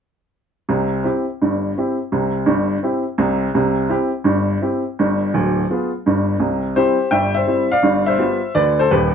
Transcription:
0.69 0.99 C2 soft
0.69 0.99 C3 medium
1.04 1.24 C4 soft
1.04 1.24 E4 soft
1.04 1.24 G4 soft
1.41 1.71 G1 soft
1.41 1.71 G2 soft
1.78 1.97 C4 soft
1.78 1.97 E4 soft
1.78 1.97 G4 soft
2.12 2.40 C2 soft
2.12 2.40 C3 medium
2.46 2.75 G1 medium
2.46 2.75 G2 medium
2.83 3.02 C4 soft
2.83 3.03 E4 soft
2.83 3.03 G4 soft
3.18 3.47 C2 medium
3.18 3.47 C3 medium
3.55 3.85 C2 medium
3.55 3.85 C3 medium
3.89 4.09 C4 soft
3.89 4.09 E4 soft
3.89 4.10 G4 medium
4.24 4.55 G1 medium
4.24 4.56 G2 medium
4.62 4.82 C4 soft
4.62 4.82 E4 soft
4.62 4.82 G4 soft
4.99 5.27 G1 medium
4.99 5.27 G2 medium
5.34 5.62 D1 medium
5.34 5.62 D2 medium
5.71 5.90 B3 soft
5.71 5.90 F4 soft
5.71 5.90 G#4 soft
6.06 6.35 G1 medium
6.06 6.34 G2 medium
6.40 6.71 C2 soft
6.40 6.70 C3 soft
6.76 6.96 G3 soft
6.76 6.96 C4 soft
6.76 6.96 E4 soft
6.76 7.10 G4 soft
6.76 7.12 C5 medium
7.11 7.42 G1 medium
7.11 7.42 G2 soft
7.11 7.33 E5 medium
7.11 7.35 G5 medium
7.34 7.70 C5 medium
7.34 7.71 E5 medium
7.47 7.67 G3 soft
7.47 7.68 C4 soft
7.47 7.68 E4 soft
7.72 8.05 D5 medium
7.72 8.07 F5 medium
7.83 8.14 G1 medium
7.83 8.14 G2 medium
8.06 8.52 C5 medium
8.06 8.55 E5 medium
8.19 8.39 G3 soft
8.19 8.39 B3 soft
8.19 8.39 F4 soft
8.55 8.86 D2 soft
8.55 8.85 D3 medium
8.55 8.78 B4 medium
8.55 8.79 D5 medium
8.79 8.91 A4 medium
8.79 8.91 C5 medium
8.91 9.15 D#1 medium
8.91 9.15 D#2 medium
8.91 9.15 G4 soft
8.91 9.15 B4 medium

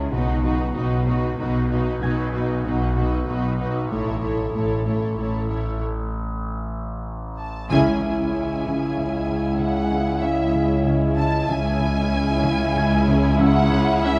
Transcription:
0.00 1.09 C#6 soft
0.00 1.09 A6 medium
0.12 0.69 B1 medium
0.12 3.92 B1 medium
0.12 0.32 B2 medium
0.12 0.69 B2 medium
0.12 0.44 D#4 medium
0.12 0.43 F#4 medium
0.12 0.41 B4 soft
0.43 0.64 B2 soft
0.43 0.75 D#4 soft
0.43 0.75 F#4 soft
0.43 0.74 B4 soft
0.75 1.32 B1 medium
0.75 1.32 B2 medium
0.75 0.95 B3 soft
0.75 1.06 D#4 soft
0.75 1.06 F#4 medium
0.75 1.07 B4 soft
1.07 1.27 B2 medium
1.07 1.37 D#4 soft
1.07 1.37 F#4 soft
1.07 1.38 B4 soft
1.38 1.95 B1 medium
1.38 1.95 B2 medium
1.38 1.58 B2 soft
1.38 1.69 D#4 soft
1.38 1.69 F#4 soft
1.38 1.70 B4 medium
1.70 1.90 B2 soft
1.70 2.01 D#4 soft
1.70 2.02 F#4 soft
1.70 2.01 B4 soft
2.02 2.58 B1 medium
2.02 2.58 B2 medium
2.02 2.21 B2 medium
2.02 2.32 D#4 medium
2.02 2.32 F#4 soft
2.02 2.33 B4 medium
2.02 3.95 G#5 soft
2.02 3.95 G#6 medium
2.33 2.53 B2 soft
2.33 2.64 D#4 soft
2.33 2.63 F#4 soft
2.33 2.64 B4 soft
2.64 3.22 B1 medium
2.64 3.21 B2 medium
2.64 2.85 B3 soft
2.64 2.96 D#4 soft
2.64 2.96 F#4 soft
2.64 2.96 B4 soft
2.97 3.16 B2 medium
2.97 3.27 D#4 soft
2.97 3.27 F#4 soft
2.97 3.27 B4 soft
3.28 3.85 B1 medium
3.28 3.47 B2 soft
3.28 3.84 B2 medium
3.28 3.58 D#4 soft
3.28 3.59 F#4 soft
3.28 3.58 B4 medium
3.59 3.79 B2 soft
3.59 3.91 D#4 soft
3.59 3.91 F#4 soft
3.59 3.91 B4 soft
3.91 4.48 A1 medium
3.91 7.71 A1 medium
3.91 4.10 A2 medium
3.91 4.48 A2 medium
3.91 4.22 E4 soft
3.91 4.22 A4 soft
3.91 4.21 C#5 soft
4.22 4.42 A2 soft
4.22 4.53 E4 soft
4.22 4.54 A4 soft
4.22 4.54 C#5 soft
4.54 5.11 A1 soft
4.54 5.11 A2 soft
4.54 4.74 A3 soft
4.54 4.85 E4 soft
4.54 4.86 A4 soft
4.54 4.85 C#5 soft
4.86 5.05 A2 soft
4.86 5.16 E4 soft
4.86 5.18 A4 soft
4.86 5.16 C#5 soft
5.17 5.74 A1 soft
5.17 5.37 A2 soft
5.17 5.74 A2 soft
5.17 5.48 E4 soft
5.17 5.49 A4 soft
5.17 5.48 C#5 soft
5.49 5.68 A2 soft
5.49 5.80 E4 soft
5.49 5.81 A4 soft
5.49 5.80 C#5 soft
7.38 7.68 A5 soft
7.70 11.45 C#2 medium
7.70 11.46 C#2 medium
7.70 7.89 C#3 medium
7.70 8.61 C#3 medium
7.70 11.46 G#3 medium
7.70 11.45 C#4 soft
7.70 11.45 E4 soft
7.70 11.46 E4 medium
7.70 11.46 G#4 medium
7.70 11.46 E5 soft
7.70 9.56 G#5 medium
8.02 8.21 C#3 soft
8.33 8.52 C#4 soft
8.33 12.25 C#7 soft
8.65 8.84 C#3 medium
8.97 9.16 C#3 soft
9.28 9.47 C#3 soft
9.59 9.79 C#3 medium
9.59 10.23 F#5 medium
9.91 10.10 C#3 soft
10.23 10.42 C#4 soft
10.23 10.87 E5 medium
10.54 10.73 C#3 medium
10.86 11.05 C#3 soft
11.18 11.37 C#3 soft
11.18 11.47 A5 medium
11.49 14.19 C#2 medium
11.49 11.68 C#3 medium
11.49 14.19 G#3 medium
11.49 14.19 C#4 medium
11.49 14.19 E4 medium
11.49 14.19 G#4 medium
11.49 14.19 E5 medium
11.49 13.39 G#5 medium
11.81 12.00 C#3 soft
12.13 12.32 C#4 medium
12.44 12.63 C#3 medium
12.76 12.95 C#3 medium
12.76 14.19 G#6 medium
13.07 13.26 C#3 medium
13.39 13.58 C#3 medium
13.39 14.02 F#5 loud
13.39 14.19 E6 medium
13.71 13.90 C#3 medium
14.03 14.19 C#4 medium
14.03 14.19 E5 medium

